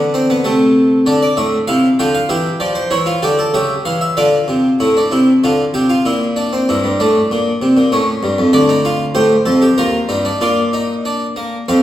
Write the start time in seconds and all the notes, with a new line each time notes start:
Already playing: D3
0.14 C4
0.30 B3
0.45 C3 A3
1.06 D3 D4
1.22 D5
1.37 A2 E5
1.68 C3 E4 F5
1.99 D3 F4 G5
2.15 F5
2.29 E3 G4 E5
2.60 F3 D5
2.75 C5
2.91 E3 E4 C#5
3.06 F4
3.22 D3 G4 D5
3.39 A4
3.54 C#3 G4 E5
3.85 E3 F5
4.01 E5
4.17 D3 F4 D5
4.48 C3
4.80 A2 E4
4.97 D4
5.11 C3 E4
5.44 D3 F4
5.74 C3 G4
5.90 F4
6.06 A#2 E4
6.36 D4
6.53 C4
6.69 G2 E4
6.84 G2
7.00 A2 D4
7.31 A#2
7.62 C3
7.77 A#2
7.92 A2 C#4
8.23 G2
8.38 F2
8.53 D2 D4 D5
8.69 D#4
8.85 F4
9.15 A2 G4 C5
9.46 F2 A4
9.62 G4
9.78 D#2 F4 A#4
10.09 G2 D#4
10.25 D4
10.41 A#2 F4 D5
10.73 D#4
11.05 D4
11.36 A#3
11.68 F2 C4 F5